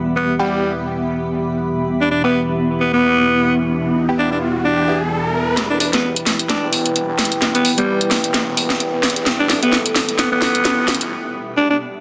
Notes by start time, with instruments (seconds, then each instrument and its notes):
Already playing: analog synth pad E3 B3 G4, ambient pad B3 G4 E5 B5
0.16 alto saxophone B3
0.39 alto saxophone G3, synth stab B3 E4 G4
1.88 analog synth pad E4, riser
2.01 alto saxophone D4
2.11 alto saxophone D4
2.24 alto saxophone B3, synth stab B3 E4 G4
2.80 alto saxophone B3
2.93 alto saxophone B3
4.09 synth stab B3 E4 G4
4.19 alto saxophone D4
4.32 alto saxophone D4
4.65 alto saxophone D4
4.88 synth stab B3 E4 G4
5.57 detuned saw bass E1, analog synth pad E4 B4 G5, snare, closed hi-hat
5.70 detuned saw bass E1, alto saxophone D4
5.80 alto saxophone D4, open hi-hat
5.93 alto saxophone B3, synth stab B3 E4 G4, snare, closed hi-hat
6.03 detuned saw bass E1
6.16 closed hi-hat
6.27 snare, open hi-hat
6.39 closed hi-hat
6.50 alto saxophone D4, snare, closed hi-hat
6.63 detuned saw bass E1
6.73 open hi-hat
6.86 closed hi-hat
6.96 closed hi-hat
7.09 detuned saw bass E2
7.19 snare, open hi-hat
7.25 closed hi-hat
7.32 detuned saw bass E1, closed hi-hat
7.42 snare, closed hi-hat
7.55 alto saxophone B3, closed hi-hat
7.65 open hi-hat
7.78 detuned saw bass G1, alto saxophone G3, synth stab B3 E4 G4, closed hi-hat
8.01 closed hi-hat
8.11 snare, open hi-hat
8.24 detuned saw bass E1, closed hi-hat
8.34 snare, closed hi-hat
8.57 open hi-hat
8.70 detuned saw bass E1, snare, closed hi-hat
8.80 closed hi-hat
8.93 detuned saw bass E2
9.03 snare, open hi-hat
9.10 closed hi-hat
9.16 detuned saw bass E2, closed hi-hat
9.26 analog synth pad A4, snare, closed hi-hat
9.39 detuned saw bass E1, alto saxophone D4
9.50 alto saxophone D4, snare, open hi-hat
9.62 alto saxophone B3, synth stab B3 E4 G4, closed hi-hat
9.73 snare
9.86 closed hi-hat
9.96 snare, open hi-hat
10.09 closed hi-hat
10.19 alto saxophone B3, snare, closed hi-hat
10.32 detuned saw bass E1, alto saxophone B3
10.42 snare, open hi-hat
10.55 closed hi-hat
10.65 snare, closed hi-hat
10.78 detuned saw bass E2
10.88 snare, open hi-hat
10.95 closed hi-hat
11.01 detuned saw bass E1, closed hi-hat
11.57 alto saxophone D4
11.70 alto saxophone D4